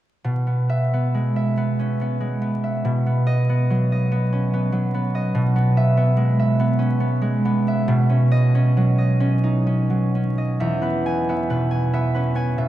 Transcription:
0.24 2.83 B2 soft
0.47 0.92 B3 soft
0.69 1.35 E5 soft
0.94 1.56 B3 soft
1.15 2.19 G#3 soft
1.36 2.63 E5 soft
1.57 2.00 B3 soft
1.79 2.16 C#4 soft
2.01 2.40 B3 soft
2.20 2.88 G#3 soft
2.42 3.05 B3 soft
2.64 2.89 E5 soft
2.85 5.33 B2 soft
3.06 3.48 B3 soft
3.27 3.91 D#5 soft
3.49 4.10 B3 soft
3.70 4.71 F#3 soft
3.92 5.14 D#5 soft
4.12 4.52 B3 soft
4.33 4.67 C#4 soft
4.54 4.93 B3 soft
4.72 5.38 F#3 soft
4.94 5.55 B3 soft
5.15 5.39 D#5 soft
5.35 7.87 B2 medium
5.56 5.96 B3 soft
5.77 6.38 E5 medium
5.97 6.58 B3 soft
6.17 7.20 G#3 soft
6.40 7.67 E5 soft
6.60 6.99 B3 soft
6.79 7.15 C#4 soft
7.00 7.44 B3 soft
7.22 7.90 G#3 soft
7.45 10.81 B3 soft
7.68 7.92 E5 soft
7.88 10.67 B2 medium
8.10 8.54 C#4 soft
8.32 8.97 D#5 medium
8.55 9.19 C#4 soft
8.77 9.89 F#3 soft
8.98 10.37 D#5 soft
9.20 9.65 C#4 soft
9.44 9.84 D#4 soft
9.67 10.14 C#4 soft
9.90 10.66 F#3 soft
10.15 10.66 C#4 soft
10.38 10.66 D#5 soft
10.60 12.68 E2 soft
10.60 11.28 E5 soft
10.82 11.28 B3 soft
10.82 11.49 B4 soft
11.06 11.70 G#5 medium
11.29 11.93 B3 soft
11.29 11.92 E5 soft
11.50 12.57 B2 soft
11.50 12.13 B4 soft
11.71 12.34 G#5 soft
11.94 12.34 B3 soft
11.94 12.57 E5 soft
12.15 12.52 C#4 soft
12.15 12.68 B4 soft
12.35 12.68 B3 soft
12.35 12.68 G#5 soft
12.58 12.68 B2 soft
12.58 12.68 E5 soft

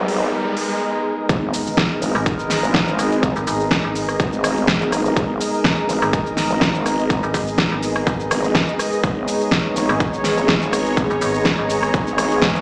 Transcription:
0.00 0.31 G#1 loud
0.00 1.25 G#3 medium
0.00 1.25 B3 medium
0.00 1.25 D#4 medium
0.00 0.81 G#4 medium
0.00 1.25 A#4 medium
0.00 0.81 D#5 medium
0.00 riser medium
0.08 open hi-hat medium
0.57 open hi-hat loud
1.29 1.52 G#1 loud
1.29 12.61 G#3 medium
1.29 12.61 B3 medium
1.29 12.61 D#4 medium
1.29 12.61 G#4 medium
1.29 9.02 A#4 loud
1.29 kick loud
1.29 impact medium
1.29 cabasa soft
1.40 12.61 D#5 medium
1.54 open hi-hat loud
1.54 cabasa medium
1.67 cabasa soft
1.77 kick loud
1.77 snare loud
1.77 cabasa soft
2.02 2.13 G#1 loud
2.02 open hi-hat medium
2.02 cabasa medium
2.15 2.61 G#1 loud
2.15 cross-stick medium
2.15 cabasa soft
2.26 kick loud
2.26 cabasa soft
2.39 cabasa soft
2.50 snare medium
2.50 open hi-hat loud
2.50 cabasa medium
2.63 2.85 G#1 loud
2.63 cabasa soft
2.74 kick loud
2.74 snare loud
2.74 cabasa soft
2.87 3.34 G#1 loud
2.87 cabasa soft
2.99 cross-stick medium
2.99 open hi-hat medium
2.99 cabasa medium
3.12 cabasa soft
3.23 kick loud
3.23 cabasa soft
3.36 3.45 G#1 loud
3.36 cabasa soft
3.47 3.82 G#1 loud
3.47 open hi-hat loud
3.47 cabasa medium
3.60 cabasa soft
3.71 kick loud
3.71 snare loud
3.71 cabasa soft
3.84 4.18 G#1 loud
3.95 open hi-hat medium
3.95 cabasa medium
4.09 cross-stick medium
4.09 cabasa soft
4.20 4.66 G#1 loud
4.20 kick loud
4.20 cabasa soft
4.33 cabasa soft
4.44 cross-stick medium
4.44 open hi-hat loud
4.44 cabasa medium
4.57 cabasa soft
4.68 4.79 G#1 loud
4.68 kick loud
4.68 snare loud
4.68 cabasa soft
4.81 5.15 G#1 loud
4.81 cabasa soft
4.92 cross-stick medium
4.92 open hi-hat medium
4.92 cabasa medium
5.06 cabasa soft
5.16 5.39 G#1 loud
5.16 kick loud
5.16 cabasa soft
5.41 open hi-hat loud
5.41 cabasa medium
5.54 cabasa soft
5.64 kick loud
5.64 snare loud
5.64 cabasa soft
5.89 6.00 G#1 loud
5.89 open hi-hat medium
5.89 cabasa medium
6.02 6.48 G#1 loud
6.02 cross-stick medium
6.02 cabasa soft
6.13 kick loud
6.13 cabasa soft
6.27 cabasa soft
6.37 snare medium
6.37 open hi-hat loud
6.37 cabasa medium
6.50 6.73 G#1 medium
6.50 cabasa soft
6.61 kick loud
6.61 snare loud
6.61 cabasa soft
6.75 7.21 G#1 loud
6.75 cabasa soft
6.86 cross-stick medium
6.86 open hi-hat medium
6.86 cabasa medium
6.99 cabasa soft
7.10 kick loud
7.10 cabasa soft
7.23 7.32 G#1 loud
7.23 cabasa soft
7.34 7.69 G#1 loud
7.34 kick medium
7.34 open hi-hat loud
7.34 cabasa medium
7.48 cabasa soft
7.58 kick loud
7.58 snare loud
7.58 cabasa soft
7.71 8.05 G#1 loud
7.83 open hi-hat medium
7.83 cabasa medium
7.96 cross-stick medium
7.96 cabasa soft
8.07 8.29 G#1 loud
8.07 kick loud
8.07 cabasa soft
8.20 cabasa soft
8.31 8.53 G#1 loud
8.31 cross-stick medium
8.31 open hi-hat loud
8.31 cabasa medium
8.44 cabasa soft
8.55 kick loud
8.55 snare loud
8.55 cabasa soft
8.69 cabasa soft
8.79 cross-stick medium
8.79 open hi-hat medium
8.79 cabasa medium
8.93 cabasa soft
9.04 9.26 G#1 loud
9.04 12.61 C#5 loud
9.04 kick loud
9.04 cabasa soft
9.28 open hi-hat loud
9.28 cabasa medium
9.41 cabasa soft
9.51 kick loud
9.51 snare loud
9.51 cabasa soft
9.76 9.87 G#1 loud
9.76 12.61 A#5 medium
9.76 open hi-hat medium
9.76 cabasa medium
9.89 10.35 G#1 loud
9.89 cross-stick medium
9.89 cabasa soft
10.00 kick loud
10.00 cabasa soft
10.14 cabasa soft
10.24 snare medium
10.24 open hi-hat loud
10.24 cabasa medium
10.38 10.60 G#1 medium
10.38 cabasa soft
10.48 kick loud
10.48 snare loud
10.48 cabasa soft
10.62 11.08 G#1 loud
10.62 cabasa soft
10.73 cross-stick medium
10.73 open hi-hat medium
10.73 cabasa medium
10.86 cabasa soft
10.97 kick loud
10.97 cabasa soft
11.10 11.20 G#1 medium
11.10 cabasa soft
11.21 11.56 G#1 loud
11.21 open hi-hat loud
11.21 cabasa medium
11.35 cabasa soft
11.45 kick loud
11.45 snare loud
11.45 cabasa soft
11.58 11.92 G#1 medium
11.70 open hi-hat medium
11.70 cabasa medium
11.83 cross-stick medium
11.83 cabasa soft
11.94 12.40 G#1 medium
11.94 kick loud
11.94 cabasa soft
12.07 cabasa soft
12.18 cross-stick medium
12.18 open hi-hat loud
12.18 cabasa medium
12.31 cabasa soft
12.42 12.53 G#1 loud
12.42 kick loud
12.42 snare loud
12.42 cabasa soft
12.55 12.61 G#1 loud
12.55 cabasa soft

